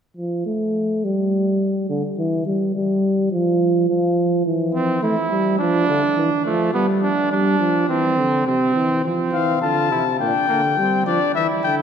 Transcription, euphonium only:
0.17 0.44 F3 medium
0.46 1.06 A3 medium
1.04 1.89 G3 medium
1.89 2.02 D3 medium
2.18 2.46 E3 medium
2.46 2.75 G3 medium
2.75 3.31 G3 medium
3.32 3.88 F3 medium
3.89 4.45 F3 medium
4.46 5.02 E3 medium
5.03 5.15 A3 medium
5.31 5.59 G3 medium
5.59 5.88 F3 medium
5.88 6.01 D3 medium
6.17 6.30 E3 medium
6.45 6.73 F3 medium
6.74 7.10 G3 medium
7.31 7.58 G3 medium
7.59 7.88 F3 medium
7.89 8.19 E3 medium
8.18 8.46 D3 medium
8.46 8.75 C3 medium
8.75 9.04 E3 medium
9.05 9.31 F3 medium
9.33 9.61 E3 medium
9.62 9.92 D3 medium
9.91 10.20 C3 medium
10.20 10.33 A#2 medium
10.49 10.79 D3 medium
10.78 11.06 G3 medium
11.06 11.19 F3 medium
11.35 11.48 E3 medium
11.63 11.82 D3 medium

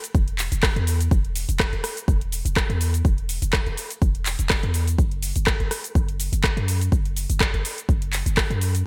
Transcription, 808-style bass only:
0.15 0.49 E1 loud
0.52 0.72 E1 loud
0.76 1.09 E2 loud
1.11 1.45 E1 loud
1.49 1.69 E1 loud
1.73 1.82 E1 medium
2.08 2.42 E1 loud
2.45 2.65 E1 loud
2.70 3.02 E2 loud
3.05 3.39 E1 loud
3.42 3.62 E1 medium
3.67 3.76 E1 medium
4.02 4.36 E1 loud
4.39 4.59 E1 medium
4.63 4.96 E2 medium
4.99 5.33 F#1 loud
5.36 5.56 F#1 medium
5.60 5.69 F#1 medium
5.95 6.29 F#1 loud
6.33 6.53 F#1 loud
6.57 6.89 F#2 loud
6.92 7.26 F#1 loud
7.30 7.50 F#1 medium
7.54 7.63 F#1 medium
7.89 8.23 F#1 loud
8.26 8.46 F#1 loud
8.50 8.83 F#2 loud

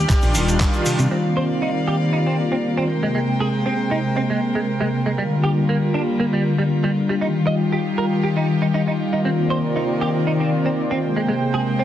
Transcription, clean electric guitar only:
1.11 1.15 C4 medium
1.37 1.43 C5 medium
1.62 1.69 D#4 medium
1.88 1.94 G4 medium
2.13 2.17 D#4 medium
2.27 2.36 C4 medium
2.52 2.55 C4 medium
2.77 2.83 C4 medium
3.03 3.06 G#3 medium
3.15 3.19 G#3 medium
3.40 3.47 G#4 medium
3.66 3.72 C4 medium
3.91 3.98 D#4 medium
4.17 4.21 C4 medium
4.30 4.39 G#3 medium
4.55 4.59 G#3 medium
4.81 4.87 G#3 medium
5.06 5.10 G#3 medium
5.18 5.22 G3 medium
5.44 5.50 G4 medium
5.69 5.76 A#3 medium
5.94 6.01 D4 medium
6.20 6.24 A#3 medium
6.33 6.42 G3 medium
6.58 6.62 G3 medium
6.84 6.90 G3 medium
7.09 7.13 G3 medium
7.21 7.25 D#4 medium
7.47 7.54 D#5 medium
7.72 7.79 G4 medium
7.98 8.05 A#4 medium
8.23 8.27 G4 medium
8.37 8.46 D#4 medium
8.62 8.66 D#4 medium
8.74 8.81 D#4 medium
8.88 8.91 D#4 medium
9.13 9.19 D#4 medium
9.25 9.29 C4 medium
9.50 9.57 C5 medium
9.76 9.83 D#4 medium
10.01 10.08 G4 medium
10.27 10.31 D#4 medium
10.40 10.49 C4 medium
10.66 10.69 C4 medium
10.91 10.97 C4 medium
11.16 11.20 G#3 medium
11.28 11.32 G#3 medium
11.54 11.61 G#4 medium
11.79 11.84 C4 medium

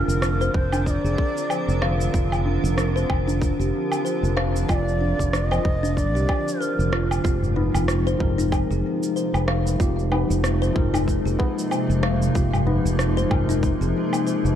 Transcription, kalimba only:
0.41 0.71 C5 loud
0.73 0.80 D4 loud
1.05 1.49 G#4 medium
1.50 1.68 C5 medium
1.82 1.92 F5 loud
2.14 2.31 F4 medium
2.46 2.63 D4 medium
2.96 3.26 C5 loud
3.28 3.35 D4 loud
3.60 4.04 G4 medium
4.05 4.22 C5 medium
4.37 4.47 F5 loud
4.69 4.86 F4 medium
5.01 5.18 D4 medium
5.51 5.81 C5 medium
5.83 5.91 D4 loud
6.15 6.27 G4 medium
6.61 6.78 C5 medium
6.92 7.10 F4 medium
7.24 7.42 F4 medium
7.56 7.74 D#4 medium
8.07 8.37 C5 loud
8.38 8.46 D#4 medium
8.71 9.15 G#4 medium
9.16 9.33 C5 medium
9.48 9.58 F5 loud
9.80 9.97 F4 medium
10.12 10.29 D#4 medium
10.62 10.92 C5 loud
10.94 11.01 D#4 loud
11.25 11.70 G#4 medium
11.71 11.88 C5 medium
12.03 12.13 F5 medium
12.35 12.52 F4 medium
12.67 12.84 D#4 medium
13.17 13.47 C5 loud
13.49 13.57 D#4 loud
13.81 14.25 G#4 medium
14.27 14.44 C5 medium

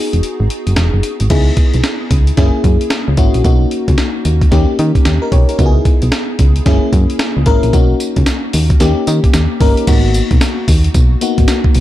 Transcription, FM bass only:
0.13 0.21 E1 medium
0.40 0.48 G#1 loud
0.67 0.75 F#1 medium
0.77 0.90 E1 loud
0.94 1.01 F#1 medium
1.21 1.28 G#1 medium
1.31 1.51 C#2 loud
1.74 1.82 B1 medium
2.11 2.32 C#2 medium
2.38 2.51 F#1 loud
2.64 2.77 F#2 medium
3.08 3.16 C#2 loud
3.18 3.31 G#1 medium
3.35 3.43 A#1 medium
3.45 3.66 B1 loud
3.88 3.96 C#2 loud
4.25 4.46 D#2 medium
4.52 4.65 D#2 loud
4.79 4.92 D#3 loud
5.06 5.19 D#2 medium
5.32 5.45 B1 medium
5.59 5.80 C#2 loud
6.03 6.10 B1 loud
6.39 6.60 C#2 medium
6.66 6.79 F#1 loud
6.93 7.06 F#2 loud
7.37 7.44 C#2 loud
7.47 7.59 G#1 medium
7.63 7.71 A#1 medium
7.74 7.94 B1 loud
8.17 8.25 C#2 medium
8.54 8.75 D#2 loud
8.81 8.94 D#2 loud
9.08 9.20 D#3 loud
9.34 9.47 D#2 medium
9.61 9.74 G1 medium
9.88 10.21 G#1 loud
10.31 10.39 B1 loud
10.68 10.89 D#2 loud
10.95 11.16 B1 loud
11.38 11.46 G#1 medium
11.76 11.80 B1 medium

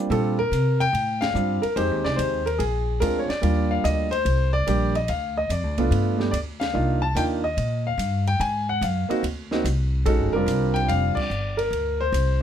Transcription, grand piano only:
0.10 0.36 G3 medium
0.10 0.36 C4 medium
0.10 0.36 D4 medium
0.10 0.36 F4 medium
0.10 0.37 A4 medium
0.39 0.81 A#4 loud
0.80 1.23 G5 loud
1.21 1.64 F5 loud
1.34 1.59 G3 medium
1.34 1.60 C4 soft
1.34 1.60 D4 soft
1.34 1.60 F4 medium
1.62 1.75 A#4 medium
1.76 2.40 G#3 medium
1.76 2.40 C4 medium
1.76 2.40 D#4 medium
1.76 2.41 G4 medium
1.76 2.02 C5 medium
2.04 2.17 D5 loud
2.16 2.46 C5 medium
2.46 2.60 A#4 medium
2.59 3.02 G#4 medium
3.00 3.26 G#3 medium
3.00 3.26 C4 medium
3.00 3.26 D4 soft
3.00 3.26 F4 medium
3.00 3.18 A#4 loud
3.19 3.29 C#5 medium
3.29 3.72 D5 medium
3.42 4.06 G3 medium
3.42 4.06 A#3 medium
3.42 4.06 D4 medium
3.42 4.06 F4 medium
3.71 3.84 F5 medium
3.84 4.13 D#5 loud
4.11 4.50 C5 loud
4.53 4.96 D5 loud
4.67 4.92 G3 medium
4.67 4.92 A#3 medium
4.67 4.92 D4 medium
4.67 4.93 G4 medium
4.96 5.09 D#5 medium
5.09 5.35 F5 medium
5.37 5.51 D#5 medium
5.51 5.89 D5 medium
5.78 6.16 A3 medium
5.78 6.16 B3 medium
5.78 6.17 D4 medium
5.78 6.17 F4 medium
6.18 6.31 A3 medium
6.18 6.31 B3 medium
6.18 6.31 D4 medium
6.18 6.31 G4 medium
6.31 6.38 D5 medium
6.60 7.03 F5 medium
6.73 6.99 A#3 medium
6.73 6.99 D4 medium
6.73 6.99 D#4 medium
6.73 7.00 F4 medium
7.02 7.16 A5 medium
7.15 7.40 A#3 medium
7.15 7.41 D4 medium
7.15 7.41 D#4 medium
7.15 7.41 F4 medium
7.15 7.23 G5 loud
7.44 7.86 D#5 medium
7.87 8.24 F5 medium
8.28 8.41 G5 medium
8.41 8.66 G#5 medium
8.69 8.83 F#5 medium
8.83 9.21 F5 medium
9.09 9.21 A#3 medium
9.09 9.22 C4 medium
9.09 9.22 D#4 medium
9.09 9.22 F#4 medium
9.51 9.63 A#3 medium
9.51 9.63 C4 medium
9.51 9.64 D#4 medium
9.51 9.64 F#4 medium
10.06 10.31 G#3 medium
10.06 10.31 C#4 medium
10.06 10.32 D#4 medium
10.06 10.32 F#4 medium
10.06 10.32 A4 medium
10.33 11.22 G3 medium
10.33 11.23 C4 medium
10.33 11.23 D4 medium
10.33 11.23 F4 medium
10.33 10.76 A#4 loud
10.74 10.89 G5 loud
10.88 11.15 F5 loud
11.15 11.59 D5 medium
11.57 12.00 A#4 medium
12.00 12.39 C5 loud

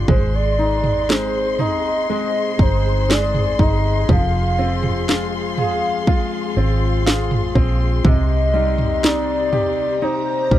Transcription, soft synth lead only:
0.10 0.36 C5 medium
0.35 1.12 D5 medium
1.10 1.59 C5 medium
1.61 2.07 D#5 medium
2.12 2.63 D#5 loud
2.62 3.13 C5 medium
3.11 3.63 D5 medium
3.62 4.10 D#5 medium
4.11 5.05 F5 loud
5.59 6.53 F5 loud
8.07 9.06 D#5 loud
9.05 10.05 D5 loud
10.04 10.59 C5 loud

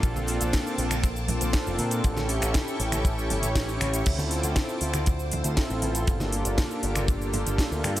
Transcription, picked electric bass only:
0.03 0.38 A#1 loud
0.41 0.51 A#1 loud
0.78 1.38 A#1 medium
1.41 1.52 A#1 medium
1.67 1.77 F1 medium
1.79 2.00 A#2 loud
2.04 2.39 A1 loud
2.42 2.53 A1 loud
2.80 3.29 A1 medium
3.30 3.41 G1 loud
3.43 3.78 A1 medium
3.80 4.02 A1 medium
4.07 4.41 D2 loud
4.43 4.54 D2 loud
4.81 5.42 D2 medium
5.45 5.55 D2 medium
5.70 5.81 A1 medium
5.83 6.04 A1 loud
6.08 6.42 G1 loud
6.46 6.56 G1 loud
6.83 7.43 G1 medium
7.46 7.57 G1 medium
7.71 7.82 D2 loud
7.84 8.00 G2 loud

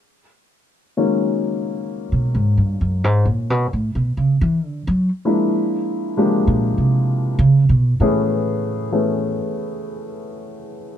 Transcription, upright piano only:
0.97 1.53 D#3 soft
0.97 1.53 F#3 soft
0.97 1.53 G#3 soft
0.97 1.53 A#3 soft
0.97 1.53 C#4 soft
5.25 6.10 F3 soft
5.25 6.10 G#3 soft
5.25 6.11 A#3 soft
5.25 6.11 D4 soft
5.25 6.10 E4 soft
6.17 6.44 F3 soft
6.17 6.43 G#3 medium
6.17 6.44 A#3 soft
6.17 6.44 D4 soft
6.17 6.43 G4 medium
8.01 8.86 E3 medium
8.01 8.86 A3 medium
8.01 8.86 B3 medium
8.01 8.86 C#4 medium
8.01 8.86 G#4 medium
8.92 9.18 E3 soft
8.92 9.19 A3 soft
8.92 9.18 B3 soft
8.92 9.19 C#4 soft
8.92 9.19 G#4 soft

